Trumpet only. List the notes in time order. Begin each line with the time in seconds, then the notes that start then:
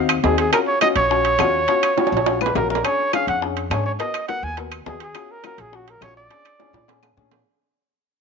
0.25 G#4
0.40 G#4
0.53 A#4
0.67 C#5
0.82 D#5
0.97 C#5
2.41 B4
2.56 A#4
2.71 A#4
2.85 C#5
3.14 F5
3.29 F#5
3.72 C#5
3.86 C#5
4.00 D#5
4.28 F#5
4.44 G#5
4.88 G#4
5.02 G#4
5.31 A#4
5.46 A#4
5.61 G#4
5.75 F#4
5.89 A#4
6.03 C#5
6.17 D5